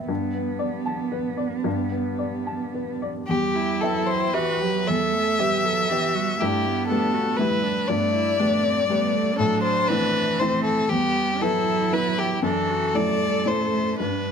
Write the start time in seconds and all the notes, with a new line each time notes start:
Already playing: E2 B3 B4 E5 G5
0.08 G2 B3
0.34 B3
0.59 D5
0.86 A5
1.12 B4
1.37 D5
1.64 G2
1.92 B3
2.19 D5
2.47 A5
2.74 B4
3.02 D5
3.28 E2 G3 G4
3.55 E4
3.81 F#3 B3 A4 E5 G5
4.07 C5
4.33 E3 B3 F#4 G4 B4 E5
4.61 F#3 G4
4.87 E2 G3 A4 E5
5.13 A3
5.39 G3 B3 G4 E5
5.63 F#3 A4
5.88 E3 B3 G4 E5
6.14 G3 F#4
6.38 G2 A3 E4 G4
6.65 B3
6.87 A3 D4 G4 A4 B4
7.13 F#4
7.37 G3 A3 E4 G4 B4
7.63 D4
7.88 G2 A3 B3 D5
8.13 E4
8.39 A3 D4 G4 B4
8.63 C4
8.88 G3 A3 B3 G4 B4
9.14 A3
9.37 A2 F#3 D4 A4
9.63 C5
9.88 E3 A3 C4 E4 B4
10.39 A3 C4 E4 C5
10.64 A4
10.89 E2 G3 B3 G4
11.41 F#3 B3 E4 A4 B4
11.92 B3 E4 B4
12.19 G4
12.43 F#2 E3 D4 A4
12.69 F#4
12.94 F#3 A3 E4 A4 D5
13.19 G3
13.45 A3 E4 C5 D5
13.72 A3
14.00 G2 G3 D4 B4